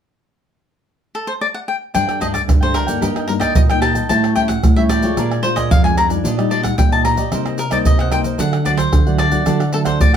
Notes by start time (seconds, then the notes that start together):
1.15 A4
1.27 C5
1.41 D5
1.54 F#5
1.68 G5
1.94 G2 G3 A3 D4 A4 D5 G5, pandeiro, shaker, surdo
2.07 A4 D5 G5, pandeiro, tamborim, shaker
2.20 G3 A3 D4 A4 D5 D#5 G5, pandeiro, shaker, surdo
2.33 D5, muted cavaquinho stroke, pandeiro, tamborim, shaker, surdo
2.48 G2 D3, pandeiro, tamborim, shaker, surdo
2.61 G3 A3 D4 A4 C5 D5 G5, pandeiro, shaker
2.74 D4 A4 A#4 D5 G5, pandeiro, tamborim
2.87 G3 A#3 D#4 A4 D5 G5, pandeiro, shaker, surdo
3.01 G2 G4 A#4 D#5 G5, pandeiro, tamborim, shaker, surdo
3.16 A#4 D#5 G5, pandeiro, tamborim, shaker
3.28 G3 A#3 D#4 A#4, muted cavaquinho stroke, pandeiro
3.40 A#4 D5 D#5 G5, pandeiro, tamborim, shaker, surdo
3.55 G2 A#2 D#5, pandeiro, shaker, surdo
3.69 G3 A#3 D#4 A#4 D#5 G5, pandeiro, tamborim, shaker
3.81 G4 A#4 D#5 G5 A5, pandeiro, tamborim
3.95 A#4 D#5 G5, pandeiro, shaker, surdo
4.09 A2 G3 C#4 E4 A4 C#5 G5 A5, pandeiro, shaker, surdo
4.23 A4 C#5 G5, pandeiro, tamborim, shaker
4.35 G3 C#4 E4 A4 C#5 G5, pandeiro, surdo
4.48 F#5, muted cavaquinho stroke, pandeiro, tamborim, shaker, surdo
4.63 A2 E3, pandeiro, tamborim, shaker, surdo
4.76 G3 C#4 E4 A4 C#5 E5 G5, pandeiro, shaker
4.89 E4 A4 C#5 D5 G5, pandeiro, tamborim, shaker
5.02 G#3 D4 F4 A4 C#5 G5, pandeiro, shaker, surdo
5.16 A#2 D4 A#4 D5 G#5, pandeiro, tamborim, shaker, surdo
5.31 A#4 D5 G#5, pandeiro, tamborim, shaker
5.43 G#3 D4 F4 C5, muted cavaquinho stroke, pandeiro
5.56 A#4 D5 D#5 G#5, pandeiro, tamborim, shaker, surdo
5.70 F2 F3 F5, pandeiro, shaker, surdo
5.84 G#3 D4 F4 A#4 D5 G#5, pandeiro, tamborim, shaker
5.97 D4 A#4 D5 G#5 A#5, pandeiro, tamborim
6.09 G3 D4 D#4 A#4 D5 G#5, pandeiro, shaker, surdo
6.24 A#2 D4 G4 D5 D#5, pandeiro, shaker, surdo
6.37 G3 D4 D#4 G4 D5 D#5, pandeiro, tamborim, shaker
6.50 D4 G4 D5 D#5, pandeiro
6.63 G3 D4 D#4 F#5, muted cavaquinho stroke, pandeiro, tamborim, shaker, surdo
6.78 A#2 G3 D4 D#4 G5, pandeiro, tamborim, shaker, surdo
6.91 G4 D5 D#5 A5, pandeiro, shaker
7.04 D4 G4 D5 D#5 A#5, pandeiro, tamborim
7.17 G4 D5 D#5, pandeiro, shaker, surdo
7.31 C3 G3 A#3 D#4 A#4 C5 D#5, pandeiro, tamborim, shaker, surdo
7.45 A#4 C5 D#5, pandeiro, tamborim, shaker
7.58 A#4, muted cavaquinho stroke, pandeiro, shaker
7.70 G3 A#3 D#4 A#4 C5 D5 D#5, pandeiro, tamborim, shaker, surdo
7.85 G2 C3 D#5, pandeiro, shaker, surdo
7.98 A#4 C5 D#5 F#5, pandeiro, tamborim, shaker
8.10 G3 A#3 D#4 A#4 C5 D#5 G5, pandeiro, tamborim, shaker
8.23 A#4 C5 D#5, pandeiro, shaker, surdo
8.38 D3 F#3 A3 D4 A4 D5 F#5, pandeiro, shaker, surdo
8.52 A4 D5 F#5, pandeiro, tamborim, shaker
8.65 F#3 A3 D4 A4 D5 F#5, pandeiro, shaker, surdo
8.77 C5, muted cavaquinho stroke, pandeiro, tamborim, shaker, surdo
8.92 A2 D3, pandeiro, tamborim, shaker, surdo
9.06 F#3 A3 D4 A4 D5 F#5, pandeiro, shaker
9.18 D4 A4 D5 F#5, pandeiro, tamborim
9.31 F#3 A3 D4 A4 D5 F#5, pandeiro, shaker, surdo
9.46 D3 F#3 A3 D4 A4 D5 F#5, pandeiro, tamborim, shaker, surdo
9.60 A4 D5 F#5, pandeiro, tamborim, shaker
9.72 F#3 A3 D4 A4, muted cavaquinho stroke, pandeiro
9.85 A4 C5 D5 F#5, pandeiro, tamborim, shaker, surdo
10.00 A2 D5, pandeiro, shaker, surdo
10.13 F#5